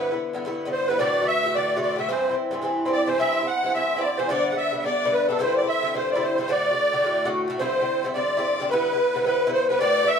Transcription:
Already playing: G2 D3 B3 A4 B4 D5
0.11 D3 B3 E4
0.33 G2 D3 B3 E4
0.45 G2 D3 B3 E4
0.65 G2 D3 B3 E4
0.72 C5
0.87 G2 D3 B3 E4 B4
0.99 A2 D3 A3 F#4 D5
1.21 D3 A3 F#4
1.25 E5
1.43 A2 D3 A3 F#4
1.54 A2 D3 A3 F#4 D5
1.76 A2 D3 A3 F#4
1.81 D5
1.96 A2 D3 A3 F#4 E5
2.08 G2 E3 C4 E4 C5
2.29 E3 C4 E4
2.51 G2 E3 C4 E4
2.62 G2 E3 C4 E4
2.85 G2 E3 C4 E4
2.91 D5
3.05 G2 E3 C4 E4 C5 D5
3.09 C5
3.18 G2 E3 C4 E4 E5
3.40 E3 C4 E4
3.47 F#5
3.63 G2 E3 C4 E4
3.74 G2 E3 C4 E4 E5
3.91 E5
3.96 G2 E3 C4 E4
4.01 D5
4.17 G2 E3 C4 E4 C5
4.28 G2 D3 B3 D4 D5
4.33 D5
4.50 D3 B3 D4 F#5
4.57 E5
4.71 G2 D3 B3 D4
4.78 E5
4.83 G2 D3 B3 D4 D5
5.05 G2 D3 B3 D4
5.12 B4
5.28 G2 D3 B3 D4 A4
5.39 G2 D3 C4 E4 C5
5.56 D5
5.62 D3 C4 E4
5.67 E5
5.82 G2 D3 C4 E4
5.94 G2 D3 C4 E4 C5
6.11 D5
6.15 G2 D3 C4 E4
6.23 C5
6.37 G2 D3 C4 E4 C5
6.46 A2 D3 A3 F#4 D5 E5
6.51 D5
6.71 D3 A3 F#4
6.92 A2 D3 A3 F#4
7.03 A2 D3 A3 F#4
7.25 A2 D3 A3 F#4
7.48 A2 D3 A3 F#4
7.59 G2 D3 C4 E4 C5
7.80 D3 C4 E4
8.03 G2 D3 C4 E4
8.14 G2 D3 C4 E4 D5
8.37 G2 D3 C4 E4
8.60 G2 D3 C4 E4
8.70 G2 D3 B3 E4 B4
8.93 D3 B3 E4
9.14 G2 D3 B3 E4 C5
9.24 G2 D3 B3 E4 B4
9.47 G2 D3 B3 E4
9.52 C5
9.68 G2 D3 B3 E4 B4
9.79 A2 D3 A3 F#4 D5
9.95 D5
10.02 D3 A3 F#4
10.07 E5

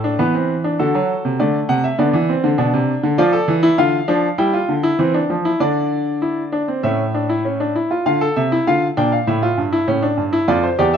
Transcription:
Already playing: A2 A4
0.04 D4
0.19 E3 B3 B4
0.34 C4
0.64 D4
0.79 D3 F#4 A4
0.94 F#3
1.25 C3
1.39 D3 A3 D5
1.69 C3 F#5
1.84 E5
1.99 D3 B3 D5
2.13 E3
2.29 C4
2.44 D3
2.58 B2 D4
2.73 C3
3.03 D3
3.18 F3 F4 D5
3.33 A4
3.48 E3
3.63 E4
3.78 D3 F4 F5
4.08 F3 D4
4.38 G3 E4 G5
4.53 F4
4.69 D3
4.83 E4
4.99 E3 C4
5.14 D4
5.30 F3
5.45 E4
5.60 D3 D4 D5
6.22 E4
6.52 D4
6.68 C4
6.83 A2 C#4 E5
7.14 D4
7.29 E4
7.45 C#4
7.60 D4
7.75 E4
7.91 F4
8.06 D3 F4 F5
8.21 A4
8.36 C3 E5
8.52 E4
8.67 D3 F4 F5
8.97 A#2 D4 G5
9.12 F5
9.27 A2 E4 E5
9.43 F4
9.57 G2
9.72 E4
9.88 A2 C#4
10.02 D4
10.17 G2
10.33 E4
10.48 F2 F4 D5
10.63 C5
10.79 E2 G4 D5
10.94 E5

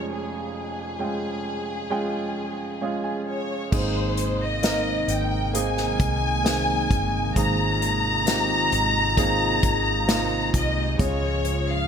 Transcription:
Already playing: F1 F2 G#3 C#4 F4 G#4 C#5
0.14 G#4
0.99 G#3 C#4 F4 G5
1.90 G#3 C#4 F4 G5
2.81 G#3 C#4 F4 G#4 F5
3.04 G#5
3.29 C#5
3.71 G#1 G#2 C3 D#3 G#3 A#3 C4 D#4 G#4 C5, kick, crash
4.17 closed hi-hat
4.42 D#5
4.63 A#3 C4 D#4 A#4, snare, closed hi-hat
5.08 G#1 G5, closed hi-hat
5.54 A#3 C4 D#4 G#4 G#5, closed hi-hat
5.77 snare
6.00 C2, kick, closed hi-hat
6.44 A#3 C4 D#4 G#4, snare, closed hi-hat
6.91 G1, kick, closed hi-hat
7.36 G#1 G#2 A#3 C4 D#4 F4 G#4 A#5, kick, closed hi-hat
7.82 closed hi-hat
8.26 A#3 C4 D#4 G4, snare, closed hi-hat
8.72 G#1, closed hi-hat
9.17 A#3 C4 D#4 G#4, kick, closed hi-hat
9.63 G#1, kick, closed hi-hat
10.08 A#3 C4 D#4 F4, snare, closed hi-hat
10.54 C2 D#5, kick, closed hi-hat
10.98 C#2 G#2 C#3 F3 G#3 C#4 F4 G#4 C#5, kick, closed hi-hat
11.45 closed hi-hat
11.71 F5

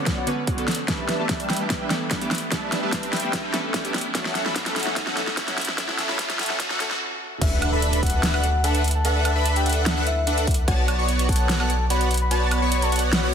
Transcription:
Already playing: B3 F#4 C#5 D5 F#5, riser
0.06 kick, snare, closed hi-hat
0.17 B3 F#4 C#5 D5 F#5
0.26 D3 B3 C#4 B4, closed hi-hat
0.47 B3 F#4 C#5 D5 F#5, kick, closed hi-hat
0.57 D3 B3 C#4 A4, closed hi-hat
0.68 snare, closed hi-hat
0.71 closed hi-hat
0.75 closed hi-hat
0.88 E3 G3 A3 B3 D4 G4 B4 E5 A5, kick, snare, closed hi-hat
1.09 snare, closed hi-hat
1.18 E3 G3 A3 B3 D4 G4 B4 E5 A5
1.29 kick, snare, closed hi-hat
1.40 closed hi-hat
1.50 G3 D4 B4 E5 G5, snare, closed hi-hat
1.53 closed hi-hat
1.56 E3 A3, closed hi-hat
1.60 B3 G4
1.70 kick, snare, closed hi-hat
1.81 G3 D4 B4 E5 G5
1.90 E3 A3 B3 A4, snare, closed hi-hat
2.11 G3 D4 B4 E5 G5, kick, snare, closed hi-hat
2.20 E3 A3 B3 G4, closed hi-hat
2.31 snare, closed hi-hat
2.35 closed hi-hat
2.38 closed hi-hat
2.51 E3 G3 A3 B3 D4 G4 B4 E5 A5, kick, snare, closed hi-hat
2.72 snare, closed hi-hat
2.82 E3 G3 A3 B3 D4 G4 B4 E5 A5
2.92 kick, snare, closed hi-hat
3.03 closed hi-hat
3.13 G3 D4 B4 E5 G5, snare, closed hi-hat
3.16 closed hi-hat
3.20 E3 A3 B3, closed hi-hat
3.24 G4
3.33 kick, snare, closed hi-hat
3.44 G3 D4 B4 E5 G5
3.52 E3 A3 B3 A4, snare, closed hi-hat
3.74 G3 D4 B4 E5 G5, kick, snare, closed hi-hat
3.83 E3 A3 B3 G4, closed hi-hat
3.94 snare, closed hi-hat
3.98 closed hi-hat
4.01 closed hi-hat
4.14 E3 F#3 A3 C#4 F#4 A4 E5 F#5, kick, snare, closed hi-hat
4.25 snare
4.35 snare, closed hi-hat
4.45 E3 F#3 A3 C#4 F#4 A4 E5 B5, snare
4.56 kick, snare, closed hi-hat
4.66 snare, closed hi-hat
4.76 F#3 C#4 A4 E5 F#5, snare, closed hi-hat
4.80 closed hi-hat
4.83 E3 A3, snare, closed hi-hat
4.87 C#4 F#4
4.96 kick, snare, closed hi-hat
5.07 F#3 C#4 A4 E5 F#5, snare
5.16 E3 A3 C#4 A4, snare, closed hi-hat
5.27 snare
5.37 F#3 C#4 A4 E5 F#5, kick, snare, closed hi-hat
5.47 E3 A3 C#4 F#4, snare, closed hi-hat
5.58 snare, closed hi-hat
5.61 closed hi-hat
5.65 snare, closed hi-hat
5.77 E3 F#3 A3 C#4 F#4 A4 E5 F#5, kick, snare, closed hi-hat
5.89 snare
5.99 snare, closed hi-hat
6.08 E3 F#3 A3 C#4 F#4 A4 E5 B5, snare
6.19 kick, snare, closed hi-hat
6.30 snare, closed hi-hat
6.39 F#3 C#4 A4 E5 F#5, snare, closed hi-hat
6.43 closed hi-hat
6.46 E3 A3, snare, closed hi-hat
6.50 C#4 F#4
6.60 kick, snare, closed hi-hat
6.70 F#3 C#4 A4 E5 F#5, snare
6.79 E3 A3 C#4 A4, snare, closed hi-hat
6.91 snare
7.41 D2 D4 A4 B4 E5 F#5, kick, closed hi-hat, crash, impact
7.62 closed hi-hat, high woodblock
7.72 D4 A4 B4 E5 B5
7.82 closed hi-hat
7.93 closed hi-hat
8.03 D4 A4 B4 E5 F#5, kick, closed hi-hat
8.06 closed hi-hat
8.10 closed hi-hat
8.23 snare, closed hi-hat
8.34 D4 A4 B4 E5 F#5, high woodblock
8.44 closed hi-hat
8.64 D4 A4 B4 E5 F#5 A5, closed hi-hat
8.75 closed hi-hat
8.84 closed hi-hat
8.88 closed hi-hat
8.91 A5, closed hi-hat
9.05 D4 A4 B4 E5 F#5, closed hi-hat
9.25 A5, closed hi-hat, high woodblock
9.36 D4 A4 B4 E5 B5
9.46 closed hi-hat
9.56 G5, closed hi-hat
9.66 D4 A4 B4 E5 F#5, closed hi-hat
9.69 closed hi-hat
9.73 closed hi-hat
9.86 snare, closed hi-hat
9.97 D4 A4 B4 E5 F#5
10.07 E5, closed hi-hat
10.27 D4 A4 B4 E5 F#5, closed hi-hat
10.38 closed hi-hat
10.47 kick, closed hi-hat
10.51 closed hi-hat
10.54 closed hi-hat
10.68 B1 B3 F#4 C#5 D5 F#5 A5, kick, closed hi-hat
10.88 closed hi-hat, high woodblock
10.99 B3 F#4 C#5 D5 C#6
11.09 closed hi-hat
11.19 closed hi-hat
11.29 B3 F#4 C#5 D5 F#5 A5, kick, closed hi-hat
11.32 closed hi-hat
11.36 closed hi-hat
11.49 snare, closed hi-hat
11.60 B3 F#4 C#5 D5 F#5 A5, high woodblock
11.70 closed hi-hat
11.90 B3 F#4 C#5 D5 F#5 B5, closed hi-hat
12.01 closed hi-hat
12.11 closed hi-hat
12.14 closed hi-hat
12.17 B5, closed hi-hat
12.31 B3 F#4 C#5 D5 A5, closed hi-hat
12.51 B5, closed hi-hat, high woodblock
12.62 B3 F#4 C#5 D5 C#6
12.72 closed hi-hat
12.82 A5, closed hi-hat
12.92 B3 F#4 C#5 D5 F#5, closed hi-hat
12.96 closed hi-hat
12.99 closed hi-hat
13.13 snare, closed hi-hat
13.23 B3 F#4 C#5 D5 F#5

